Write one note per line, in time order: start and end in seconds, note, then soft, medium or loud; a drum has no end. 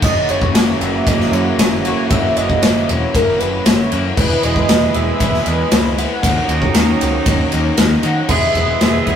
0.00 0.19 F#1 medium
0.00 1.07 F#2 medium
0.00 0.54 C#3 medium
0.00 6.19 E4 medium
0.00 4.13 C#5 medium
0.00 0.32 D#5 loud
0.00 4.13 F#5 medium
0.00 4.13 A#5 medium
0.00 kick loud
0.00 crash medium
0.04 0.56 E3 medium
0.04 0.57 A#3 medium
0.04 0.58 E4 medium
0.29 0.45 F#1 medium
0.29 0.83 C#5 loud
0.29 ride medium
0.42 kick medium
0.54 0.70 F#1 loud
0.54 1.07 C#3 medium
0.54 1.09 E3 medium
0.54 1.08 A#3 medium
0.54 snare loud
0.54 ride medium
0.58 1.09 E4 medium
0.80 0.96 F#1 loud
0.80 1.09 E5 medium
0.80 ride medium
1.07 1.23 F#1 medium
1.07 1.59 F#2 medium
1.07 1.59 C#3 medium
1.07 1.36 E3 medium
1.07 1.33 A#3 medium
1.07 1.32 E4 medium
1.07 1.35 D#5 medium
1.07 kick loud
1.07 ride loud
1.20 snare soft
1.31 1.48 F#2 medium
1.31 1.86 A#3 medium
1.31 1.85 E4 medium
1.31 1.85 C#5 loud
1.31 ride medium
1.36 1.88 E3 medium
1.58 1.90 F#1 medium
1.58 snare loud
1.58 ride loud
1.85 2.12 E3 medium
1.85 2.12 A#3 medium
1.85 2.13 E4 medium
1.85 2.12 C#5 medium
1.85 ride medium
2.10 2.27 F#1 medium
2.10 2.88 F#2 medium
2.10 2.61 C#3 medium
2.10 2.63 E3 medium
2.10 2.63 A#3 medium
2.10 2.65 E4 medium
2.10 2.38 E5 loud
2.10 kick loud
2.10 ride medium
2.36 2.52 F#1 medium
2.36 2.91 D#5 loud
2.36 ride medium
2.50 kick medium
2.62 2.79 F#1 medium
2.62 3.15 C#3 medium
2.62 3.15 E3 medium
2.62 3.16 A#3 medium
2.62 3.17 E4 medium
2.62 snare loud
2.62 ride medium
2.89 3.05 E1 medium
2.89 3.15 C#5 medium
2.89 ride medium
3.15 3.30 F#1 medium
3.15 3.66 F#2 medium
3.15 3.66 C#3 medium
3.15 3.42 E3 medium
3.15 3.41 A#3 medium
3.15 3.39 E4 medium
3.15 3.41 A#4 medium
3.15 kick loud
3.15 ride medium
3.39 3.57 F#1 medium
3.39 3.93 E3 medium
3.39 3.93 A#3 medium
3.39 3.91 E4 medium
3.39 3.66 B4 medium
3.39 ride medium
3.65 3.82 F#1 loud
3.65 4.04 C#5 loud
3.65 snare loud
3.65 ride loud
3.92 4.08 F#2 medium
3.92 4.16 E3 medium
3.92 4.17 A#3 medium
3.92 4.16 E4 medium
3.92 ride medium
4.16 4.33 E1 medium
4.16 4.67 E3 medium
4.16 4.68 G#3 medium
4.16 4.69 B3 medium
4.16 4.69 E4 loud
4.16 6.25 G#4 medium
4.16 4.45 B4 loud
4.16 6.22 B4 medium
4.16 6.22 G#5 medium
4.16 6.22 B5 medium
4.16 kick loud
4.16 crash loud
4.43 4.59 E1 medium
4.43 4.95 D#5 loud
4.43 ride medium
4.56 kick medium
4.68 4.85 E1 loud
4.68 5.19 E3 medium
4.68 5.20 G#3 medium
4.68 5.21 B3 medium
4.68 5.22 E4 medium
4.68 snare loud
4.68 ride medium
4.93 5.11 E1 medium
4.93 5.48 E5 loud
4.93 ride medium
5.20 5.37 E1 medium
5.20 5.72 E3 medium
5.20 5.48 G#3 medium
5.20 5.47 B3 medium
5.20 5.45 E4 medium
5.20 kick loud
5.20 ride medium
5.34 snare soft
5.46 5.62 E2 medium
5.46 5.99 G#3 medium
5.46 5.98 B3 medium
5.46 5.96 E4 medium
5.46 6.00 D#5 loud
5.46 ride medium
5.72 6.04 C#2 medium
5.72 snare loud
5.72 ride loud
5.98 6.23 G#3 medium
5.98 6.23 B3 medium
5.98 6.22 E4 medium
5.98 6.50 F#5 loud
5.98 ride medium
6.23 6.39 D#2 medium
6.23 6.74 D#3 medium
6.23 6.74 F#3 medium
6.23 6.75 A#3 medium
6.23 8.30 C#4 medium
6.23 8.28 D#4 medium
6.23 6.76 D#4 medium
6.23 8.31 A#4 medium
6.23 8.28 C#5 medium
6.23 8.28 F#5 medium
6.23 8.28 A#5 medium
6.23 kick loud
6.23 ride loud
6.48 6.65 D#2 medium
6.48 ride medium
6.62 kick medium
6.74 6.91 D#2 medium
6.74 7.26 D#3 medium
6.74 7.26 F#3 medium
6.74 7.28 A#3 medium
6.74 7.28 D#4 medium
6.74 snare loud
6.74 ride loud
7.01 7.18 C#2 medium
7.01 ride medium
7.26 7.43 D#2 medium
7.26 7.79 D#3 medium
7.26 7.54 F#3 medium
7.26 7.53 A#3 medium
7.26 7.51 D#4 medium
7.26 kick loud
7.26 ride loud
7.52 7.69 D#2 medium
7.52 8.05 F#3 medium
7.52 8.04 A#3 medium
7.52 8.03 D#4 medium
7.52 ride medium
7.77 7.95 D#2 loud
7.77 snare loud
7.77 ride loud
8.03 8.20 D#3 medium
8.03 8.30 F#3 medium
8.03 8.29 A#3 medium
8.03 8.28 D#4 medium
8.03 8.31 F#5 loud
8.03 ride medium
8.27 8.47 E1 medium
8.27 8.81 E3 medium
8.27 8.59 G#3 medium
8.27 9.16 G#4 medium
8.27 8.83 G#4 loud
8.27 9.16 B4 medium
8.27 9.16 E5 medium
8.27 8.82 E5 loud
8.27 9.16 B5 medium
8.27 kick loud
8.27 crash loud
8.32 8.58 B3 medium
8.32 8.57 E4 medium
8.55 8.73 E1 medium
8.55 8.82 B3 medium
8.55 8.84 E4 medium
8.55 kick medium
8.55 ride medium
8.60 8.82 G#3 medium
8.81 8.99 E1 medium
8.81 9.16 E3 medium
8.81 9.16 G#3 medium
8.81 9.16 B3 medium
8.81 9.16 E4 medium
8.81 9.07 G#4 medium
8.81 9.16 E5 loud
8.81 snare loud
8.81 ride medium
9.06 9.16 E1 medium
9.06 9.16 B3 medium
9.06 9.16 E4 medium
9.06 9.16 G#4 medium
9.06 kick medium
9.06 ride medium